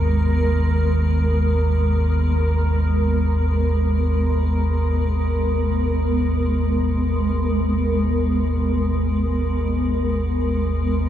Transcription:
0, 0, Header, 1, 4, 480
1, 0, Start_track
1, 0, Key_signature, 5, "minor"
1, 0, Tempo, 500000
1, 10647, End_track
2, 0, Start_track
2, 0, Title_t, "Synth texture"
2, 0, Program_c, 0, 99
2, 0, Note_on_c, 0, 70, 61
2, 4877, Note_off_c, 0, 70, 0
2, 10647, End_track
3, 0, Start_track
3, 0, Title_t, "Ambient pad"
3, 0, Program_c, 1, 92
3, 0, Note_on_c, 1, 56, 62
3, 0, Note_on_c, 1, 59, 53
3, 0, Note_on_c, 1, 70, 63
3, 10647, Note_off_c, 1, 56, 0
3, 10647, Note_off_c, 1, 59, 0
3, 10647, Note_off_c, 1, 70, 0
3, 10647, End_track
4, 0, Start_track
4, 0, Title_t, "Synth drone"
4, 0, Program_c, 2, 95
4, 0, Note_on_c, 2, 32, 68
4, 0, Note_on_c, 2, 39, 72
4, 4846, Note_off_c, 2, 32, 0
4, 4854, Note_off_c, 2, 39, 0
4, 4858, Note_on_c, 2, 32, 66
4, 4866, Note_on_c, 2, 39, 70
4, 10647, Note_off_c, 2, 32, 0
4, 10647, Note_off_c, 2, 39, 0
4, 10647, End_track
0, 0, End_of_file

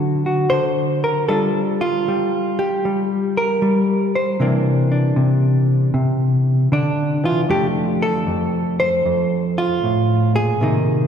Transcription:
0, 0, Header, 1, 2, 480
1, 0, Start_track
1, 0, Key_signature, -1, "major"
1, 0, Tempo, 776197
1, 793, Time_signature, 4, 2, 24, 8
1, 6846, End_track
2, 0, Start_track
2, 0, Title_t, "Hollow-body jazz guitar"
2, 0, Program_c, 0, 26
2, 0, Note_on_c, 0, 50, 67
2, 0, Note_on_c, 0, 54, 47
2, 0, Note_on_c, 0, 60, 48
2, 0, Note_on_c, 0, 66, 41
2, 0, Note_on_c, 0, 69, 81
2, 154, Note_off_c, 0, 66, 0
2, 161, Note_on_c, 0, 66, 41
2, 305, Note_off_c, 0, 69, 0
2, 308, Note_off_c, 0, 50, 0
2, 308, Note_on_c, 0, 72, 92
2, 316, Note_on_c, 0, 50, 68
2, 635, Note_off_c, 0, 72, 0
2, 642, Note_on_c, 0, 70, 79
2, 776, Note_off_c, 0, 50, 0
2, 776, Note_off_c, 0, 54, 0
2, 777, Note_off_c, 0, 60, 0
2, 777, Note_off_c, 0, 66, 0
2, 792, Note_off_c, 0, 70, 0
2, 795, Note_on_c, 0, 69, 88
2, 799, Note_on_c, 0, 55, 67
2, 802, Note_on_c, 0, 62, 47
2, 809, Note_on_c, 0, 65, 50
2, 1112, Note_off_c, 0, 65, 0
2, 1117, Note_off_c, 0, 69, 0
2, 1120, Note_on_c, 0, 65, 83
2, 1285, Note_off_c, 0, 55, 0
2, 1288, Note_on_c, 0, 55, 67
2, 1601, Note_on_c, 0, 67, 85
2, 1761, Note_off_c, 0, 55, 0
2, 1763, Note_on_c, 0, 55, 65
2, 2080, Note_off_c, 0, 65, 0
2, 2087, Note_on_c, 0, 70, 84
2, 2236, Note_off_c, 0, 55, 0
2, 2238, Note_on_c, 0, 55, 68
2, 2561, Note_off_c, 0, 67, 0
2, 2563, Note_off_c, 0, 70, 0
2, 2569, Note_on_c, 0, 72, 72
2, 2720, Note_on_c, 0, 48, 71
2, 2722, Note_off_c, 0, 55, 0
2, 2725, Note_on_c, 0, 52, 48
2, 2727, Note_off_c, 0, 62, 0
2, 2730, Note_on_c, 0, 58, 48
2, 2733, Note_on_c, 0, 62, 48
2, 3037, Note_off_c, 0, 62, 0
2, 3040, Note_on_c, 0, 62, 45
2, 3186, Note_off_c, 0, 48, 0
2, 3193, Note_on_c, 0, 48, 68
2, 3525, Note_off_c, 0, 72, 0
2, 3665, Note_off_c, 0, 48, 0
2, 3673, Note_on_c, 0, 48, 66
2, 4153, Note_off_c, 0, 48, 0
2, 4155, Note_on_c, 0, 50, 64
2, 4156, Note_off_c, 0, 62, 0
2, 4162, Note_on_c, 0, 62, 83
2, 4469, Note_off_c, 0, 52, 0
2, 4476, Note_on_c, 0, 52, 58
2, 4480, Note_off_c, 0, 50, 0
2, 4486, Note_on_c, 0, 65, 81
2, 4578, Note_off_c, 0, 65, 0
2, 4624, Note_off_c, 0, 58, 0
2, 4631, Note_on_c, 0, 41, 71
2, 4633, Note_off_c, 0, 52, 0
2, 4633, Note_off_c, 0, 62, 0
2, 4635, Note_on_c, 0, 57, 52
2, 4640, Note_on_c, 0, 62, 50
2, 4641, Note_on_c, 0, 67, 94
2, 4739, Note_off_c, 0, 67, 0
2, 4962, Note_on_c, 0, 69, 90
2, 5107, Note_off_c, 0, 41, 0
2, 5114, Note_on_c, 0, 41, 66
2, 5437, Note_off_c, 0, 69, 0
2, 5440, Note_on_c, 0, 72, 108
2, 5592, Note_off_c, 0, 41, 0
2, 5599, Note_on_c, 0, 41, 68
2, 5915, Note_off_c, 0, 72, 0
2, 5925, Note_on_c, 0, 65, 89
2, 6077, Note_off_c, 0, 41, 0
2, 6082, Note_on_c, 0, 45, 61
2, 6400, Note_off_c, 0, 65, 0
2, 6401, Note_on_c, 0, 46, 54
2, 6403, Note_off_c, 0, 45, 0
2, 6404, Note_on_c, 0, 68, 90
2, 6536, Note_off_c, 0, 57, 0
2, 6539, Note_off_c, 0, 62, 0
2, 6556, Note_off_c, 0, 46, 0
2, 6561, Note_on_c, 0, 48, 70
2, 6569, Note_on_c, 0, 51, 49
2, 6573, Note_on_c, 0, 58, 50
2, 6577, Note_on_c, 0, 63, 51
2, 6846, Note_off_c, 0, 48, 0
2, 6846, Note_off_c, 0, 51, 0
2, 6846, Note_off_c, 0, 58, 0
2, 6846, Note_off_c, 0, 63, 0
2, 6846, Note_off_c, 0, 68, 0
2, 6846, End_track
0, 0, End_of_file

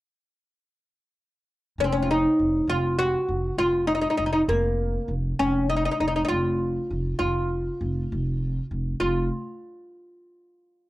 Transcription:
0, 0, Header, 1, 3, 480
1, 0, Start_track
1, 0, Tempo, 601805
1, 1421, Time_signature, 6, 3, 24, 8
1, 8691, End_track
2, 0, Start_track
2, 0, Title_t, "Oud"
2, 0, Program_c, 0, 24
2, 1438, Note_on_c, 0, 61, 90
2, 1468, Note_on_c, 0, 60, 73
2, 1486, Note_off_c, 0, 61, 0
2, 1528, Note_off_c, 0, 60, 0
2, 1535, Note_on_c, 0, 61, 87
2, 1615, Note_on_c, 0, 65, 58
2, 1666, Note_off_c, 0, 61, 0
2, 1666, Note_off_c, 0, 65, 0
2, 1681, Note_on_c, 0, 63, 88
2, 2146, Note_off_c, 0, 63, 0
2, 2149, Note_on_c, 0, 65, 90
2, 2378, Note_off_c, 0, 65, 0
2, 2382, Note_on_c, 0, 66, 90
2, 2856, Note_off_c, 0, 66, 0
2, 2859, Note_on_c, 0, 65, 93
2, 3083, Note_off_c, 0, 65, 0
2, 3089, Note_on_c, 0, 63, 83
2, 3139, Note_off_c, 0, 63, 0
2, 3148, Note_on_c, 0, 63, 64
2, 3192, Note_off_c, 0, 63, 0
2, 3202, Note_on_c, 0, 63, 69
2, 3261, Note_off_c, 0, 63, 0
2, 3270, Note_on_c, 0, 63, 61
2, 3319, Note_off_c, 0, 63, 0
2, 3329, Note_on_c, 0, 63, 69
2, 3389, Note_off_c, 0, 63, 0
2, 3399, Note_on_c, 0, 63, 58
2, 3441, Note_off_c, 0, 63, 0
2, 3451, Note_on_c, 0, 63, 67
2, 3515, Note_off_c, 0, 63, 0
2, 3580, Note_on_c, 0, 58, 76
2, 4088, Note_off_c, 0, 58, 0
2, 4302, Note_on_c, 0, 61, 90
2, 4540, Note_off_c, 0, 61, 0
2, 4543, Note_on_c, 0, 63, 79
2, 4589, Note_off_c, 0, 63, 0
2, 4598, Note_on_c, 0, 63, 61
2, 4660, Note_off_c, 0, 63, 0
2, 4669, Note_on_c, 0, 63, 69
2, 4708, Note_off_c, 0, 63, 0
2, 4718, Note_on_c, 0, 63, 62
2, 4779, Note_off_c, 0, 63, 0
2, 4789, Note_on_c, 0, 63, 65
2, 4837, Note_off_c, 0, 63, 0
2, 4847, Note_on_c, 0, 63, 55
2, 4902, Note_off_c, 0, 63, 0
2, 4912, Note_on_c, 0, 63, 62
2, 4965, Note_off_c, 0, 63, 0
2, 4983, Note_on_c, 0, 63, 63
2, 5010, Note_off_c, 0, 63, 0
2, 5013, Note_on_c, 0, 65, 80
2, 5723, Note_off_c, 0, 65, 0
2, 5733, Note_on_c, 0, 65, 80
2, 6904, Note_off_c, 0, 65, 0
2, 7179, Note_on_c, 0, 65, 76
2, 7402, Note_off_c, 0, 65, 0
2, 8691, End_track
3, 0, Start_track
3, 0, Title_t, "Upright bass"
3, 0, Program_c, 1, 32
3, 1422, Note_on_c, 1, 29, 80
3, 1795, Note_off_c, 1, 29, 0
3, 1910, Note_on_c, 1, 29, 69
3, 2093, Note_off_c, 1, 29, 0
3, 2133, Note_on_c, 1, 29, 78
3, 2509, Note_off_c, 1, 29, 0
3, 2620, Note_on_c, 1, 29, 74
3, 2807, Note_off_c, 1, 29, 0
3, 2853, Note_on_c, 1, 29, 77
3, 3229, Note_off_c, 1, 29, 0
3, 3341, Note_on_c, 1, 29, 76
3, 3527, Note_off_c, 1, 29, 0
3, 3575, Note_on_c, 1, 29, 91
3, 3950, Note_off_c, 1, 29, 0
3, 4052, Note_on_c, 1, 29, 81
3, 4241, Note_off_c, 1, 29, 0
3, 4306, Note_on_c, 1, 29, 83
3, 4676, Note_off_c, 1, 29, 0
3, 4786, Note_on_c, 1, 29, 74
3, 4970, Note_off_c, 1, 29, 0
3, 5026, Note_on_c, 1, 29, 83
3, 5396, Note_off_c, 1, 29, 0
3, 5507, Note_on_c, 1, 29, 72
3, 5690, Note_off_c, 1, 29, 0
3, 5744, Note_on_c, 1, 29, 81
3, 6115, Note_off_c, 1, 29, 0
3, 6227, Note_on_c, 1, 29, 80
3, 6410, Note_off_c, 1, 29, 0
3, 6477, Note_on_c, 1, 29, 87
3, 6843, Note_off_c, 1, 29, 0
3, 6946, Note_on_c, 1, 29, 74
3, 7130, Note_off_c, 1, 29, 0
3, 7183, Note_on_c, 1, 29, 83
3, 7404, Note_off_c, 1, 29, 0
3, 8691, End_track
0, 0, End_of_file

